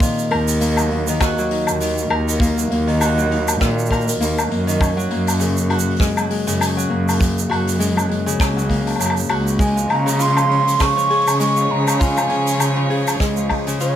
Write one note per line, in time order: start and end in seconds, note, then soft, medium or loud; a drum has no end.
0.00 1.07 D#3 medium
0.00 0.60 A#3 medium
0.00 0.84 F4 medium
0.00 kick loud
0.00 open hi-hat medium
0.00 shaker medium
0.19 shaker soft
0.31 1.43 D#2 loud
0.31 2.10 A#4 medium
0.31 open hi-hat medium
0.31 low woodblock medium
0.48 open hi-hat medium
0.48 shaker medium
0.61 0.91 A#3 medium
0.61 open hi-hat medium
0.61 shaker medium
0.77 1.11 F#3 medium
0.77 low woodblock medium
0.77 shaker medium
0.90 2.40 A#3 medium
0.90 open hi-hat soft
1.07 1.80 D#3 loud
1.07 open hi-hat medium
1.07 shaker medium
1.20 3.00 F#4 medium
1.20 kick loud
1.20 cross-stick medium
1.20 open hi-hat medium
1.20 low woodblock medium
1.20 shaker medium
1.38 1.86 F#3 medium
1.38 shaker medium
1.51 3.31 D#4 medium
1.51 open hi-hat medium
1.67 2.03 D#2 medium
1.67 low woodblock medium
1.67 shaker medium
1.80 2.86 D#3 medium
1.80 open hi-hat medium
1.80 shaker medium
1.98 shaker medium
2.10 2.63 D#2 loud
2.10 3.90 A#4 medium
2.10 low woodblock medium
2.28 open hi-hat medium
2.28 shaker medium
2.40 2.70 A#3 loud
2.40 kick loud
2.40 open hi-hat medium
2.40 shaker medium
2.57 2.91 F#3 medium
2.57 shaker medium
2.71 3.53 D#2 loud
2.71 4.20 A#3 medium
2.71 open hi-hat soft
2.87 3.59 D#3 loud
2.87 open hi-hat medium
3.00 5.44 F#4 loud
3.00 open hi-hat medium
3.00 low woodblock medium
3.00 shaker medium
3.17 3.66 F#3 loud
3.17 shaker medium
3.31 6.01 D#4 medium
3.31 open hi-hat soft
3.48 open hi-hat medium
3.48 low woodblock medium
3.48 shaker medium
3.61 4.20 A#2 medium
3.61 4.66 D#3 medium
3.61 kick loud
3.61 cross-stick medium
3.61 open hi-hat medium
3.61 shaker medium
3.79 shaker soft
3.86 shaker soft
3.90 6.03 A#4 loud
3.90 kick medium
3.90 open hi-hat medium
3.90 low woodblock medium
3.90 shaker soft
4.01 shaker soft
4.08 open hi-hat medium
4.08 shaker medium
4.20 4.40 D#2 medium
4.20 4.51 A#3 loud
4.20 open hi-hat medium
4.20 shaker medium
4.37 4.71 F#3 medium
4.37 low woodblock medium
4.37 shaker soft
4.51 5.03 F#2 medium
4.51 5.10 A#3 medium
4.51 open hi-hat soft
4.67 4.86 D#3 loud
4.67 open hi-hat medium
4.67 shaker medium
4.80 6.60 C#4 loud
4.80 kick loud
4.80 open hi-hat medium
4.80 low woodblock medium
4.80 shaker medium
4.97 5.46 F#3 loud
4.97 shaker soft
5.10 6.23 F#2 medium
5.10 6.89 A#3 medium
5.10 open hi-hat soft
5.27 open hi-hat medium
5.27 low woodblock medium
5.27 shaker medium
5.40 6.46 C#3 medium
5.40 open hi-hat medium
5.40 shaker medium
5.57 shaker medium
5.70 7.49 F#4 loud
5.70 open hi-hat soft
5.70 low woodblock medium
5.79 shaker medium
5.87 open hi-hat soft
5.91 open hi-hat soft
5.96 6.29 G#3 medium
5.96 kick loud
5.96 open hi-hat soft
6.00 cross-stick medium
6.00 open hi-hat medium
6.00 shaker medium
6.17 6.51 F#3 medium
6.17 low woodblock medium
6.17 shaker medium
6.30 7.78 G#3 medium
6.30 open hi-hat medium
6.47 6.82 F#2 medium
6.47 7.18 C#3 loud
6.47 open hi-hat medium
6.47 shaker medium
6.60 8.39 C#4 loud
6.60 open hi-hat medium
6.60 low woodblock medium
6.60 shaker medium
6.77 7.26 F#3 loud
6.77 shaker medium
6.90 7.42 F#2 medium
6.90 8.69 A#3 medium
7.09 open hi-hat medium
7.09 low woodblock medium
7.09 shaker medium
7.19 8.25 C#3 medium
7.19 kick loud
7.19 open hi-hat medium
7.19 shaker medium
7.38 shaker soft
7.49 8.32 F#2 medium
7.49 9.29 F#4 loud
7.49 open hi-hat soft
7.49 low woodblock medium
7.67 open hi-hat medium
7.67 shaker medium
7.79 8.08 G#3 loud
7.79 open hi-hat medium
7.79 shaker medium
7.96 8.31 F#3 medium
7.96 low woodblock medium
7.96 shaker soft
8.09 9.58 G#3 medium
8.09 open hi-hat soft
8.26 8.98 C#3 loud
8.26 shaker medium
8.40 8.99 C#2 medium
8.40 10.49 C#4 loud
8.40 kick loud
8.40 cross-stick medium
8.40 open hi-hat medium
8.40 low woodblock medium
8.40 shaker medium
8.56 9.06 F#3 medium
8.56 shaker medium
8.69 11.91 A#3 medium
8.69 kick medium
8.69 open hi-hat medium
8.87 open hi-hat medium
8.87 low woodblock soft
8.90 low woodblock soft
8.96 9.66 C#3 medium
8.96 low woodblock soft
9.00 9.20 F#2 medium
9.00 open hi-hat medium
9.00 low woodblock medium
9.00 shaker medium
9.06 low woodblock medium
9.10 low woodblock medium
9.17 shaker soft
9.19 shaker soft
9.23 shaker soft
9.26 shaker soft
9.27 9.82 C#2 medium
9.27 9.82 F#4 loud
9.27 open hi-hat soft
9.27 low woodblock medium
9.27 shaker soft
9.47 open hi-hat soft
9.47 shaker medium
9.56 13.96 F3 medium
9.56 9.88 G#3 loud
9.56 kick loud
9.56 open hi-hat soft
9.60 9.93 G#5 medium
9.60 open hi-hat medium
9.60 shaker medium
9.66 open hi-hat soft
9.76 10.11 F3 medium
9.76 shaker medium
9.89 11.02 C#3 loud
9.89 11.38 G#3 medium
9.89 10.23 A#5 medium
9.89 open hi-hat soft
9.89 low woodblock medium
10.06 10.78 C#3 loud
10.06 open hi-hat medium
10.06 shaker medium
10.19 11.99 F4 loud
10.19 10.83 C6 loud
10.19 open hi-hat medium
10.19 shaker medium
10.37 10.86 F3 loud
10.37 low woodblock medium
10.37 shaker medium
10.43 13.96 G#4 medium
10.43 13.96 C#5 medium
10.50 12.29 C#4 medium
10.50 open hi-hat soft
10.67 open hi-hat soft
10.67 shaker medium
10.80 11.86 C#3 medium
10.80 11.41 C#6 loud
10.80 kick loud
10.80 cross-stick medium
10.80 open hi-hat medium
10.80 low woodblock medium
10.80 shaker medium
10.96 11.55 F3 loud
10.96 shaker medium
11.10 12.90 G#4 medium
11.10 open hi-hat medium
11.20 open hi-hat soft
11.27 11.62 C#3 medium
11.27 open hi-hat medium
11.27 low woodblock medium
11.27 shaker medium
11.30 open hi-hat soft
11.40 11.69 G#3 loud
11.40 11.73 C#6 medium
11.40 open hi-hat medium
11.40 shaker medium
11.56 11.91 F3 medium
11.56 shaker medium
11.70 12.22 C#3 medium
11.70 13.19 G#3 medium
11.70 12.04 A#5 medium
11.87 12.58 C#3 loud
11.87 open hi-hat medium
11.87 low woodblock medium
11.87 shaker medium
11.99 13.80 F4 loud
11.99 12.92 G#5 medium
11.99 kick loud
11.99 open hi-hat medium
11.99 shaker medium
12.16 12.66 F3 loud
12.16 low woodblock medium
12.16 shaker medium
12.29 13.12 C#3 medium
12.29 13.96 C#4 medium
12.29 open hi-hat medium
12.47 open hi-hat medium
12.47 shaker medium
12.60 13.66 C#3 medium
12.60 open hi-hat medium
12.60 low woodblock medium
12.60 shaker medium
12.76 13.36 F3 medium
12.90 13.96 G#4 loud
12.90 open hi-hat soft
13.07 open hi-hat medium
13.07 low woodblock medium
13.07 shaker medium
13.20 13.81 C#2 medium
13.20 13.49 G#3 loud
13.20 kick loud
13.20 cross-stick medium
13.20 open hi-hat medium
13.20 shaker medium
13.37 13.71 F3 medium
13.37 shaker medium
13.49 13.96 G#3 medium
13.49 kick medium
13.49 open hi-hat medium
13.49 low woodblock medium
13.66 13.96 C#3 loud
13.66 open hi-hat medium
13.66 shaker medium
13.80 13.96 C#3 medium
13.80 13.96 F4 loud
13.80 13.96 C#5 medium
13.80 open hi-hat medium
13.80 shaker medium